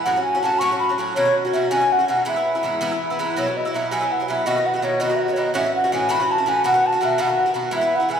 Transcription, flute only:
0.04 F#5
0.25 G#5
0.42 A5
0.59 C#6
0.80 B5
1.16 C#5
1.53 E5
1.71 G#5
1.92 F#5
2.10 F#5
2.28 E5
3.38 C#5
3.57 D#5
3.74 E5
3.91 G#5
4.12 F#5
4.29 E5
4.46 D#5
4.66 F#5
4.83 C#5
5.01 D#5
5.16 E5
5.21 D#5
5.33 C#5
5.39 D#5
5.56 E5
5.76 F#5
5.94 G#5
6.11 B5
6.32 A5
6.49 G#5
6.67 F#5
6.86 A5
7.04 E5
7.21 F#5
7.76 E5
7.96 F#5
8.13 G#5

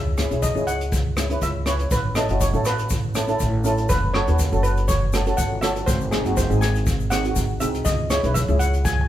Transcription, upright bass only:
Already playing: C#2
0.31 B1
0.55 C#2
1.42 C#2
1.91 A1
2.29 F#1
2.53 A1
3.40 A1
3.90 F#1
4.27 D#2
4.52 F#1
5.38 G1
5.88 G#1
6.25 F#1
6.50 G#1
7.36 G#1
7.61 C2
7.86 C#2
8.24 B1
8.48 C#2

